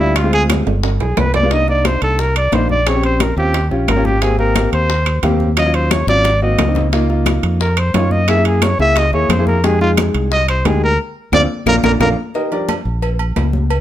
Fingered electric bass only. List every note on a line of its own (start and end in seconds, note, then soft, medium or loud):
0.00 0.61 D2 medium
0.67 0.98 G1 loud
1.01 1.16 B1 medium
1.17 1.96 C2 medium
2.02 2.49 C2 loud
2.52 3.31 A#1 medium
3.37 3.68 D#2 loud
3.71 3.87 A#1 medium
3.88 4.67 G#1 medium
4.72 5.20 D#2 loud
5.23 6.02 D#2 medium
6.07 6.55 G#1 loud
6.58 7.38 C#2 medium
7.43 7.91 F2 medium
7.94 8.73 F#2 medium
8.79 9.11 C#2 medium
9.13 9.28 D#2 medium
9.29 10.09 F2 loud
10.14 10.62 C2 loud
10.65 10.97 D2 medium
11.32 11.45 D2 loud
11.66 11.79 A#1 loud
11.83 11.96 A#1 medium
12.00 12.13 A#1 loud
12.85 13.33 A#1 medium
13.36 13.81 C#2 medium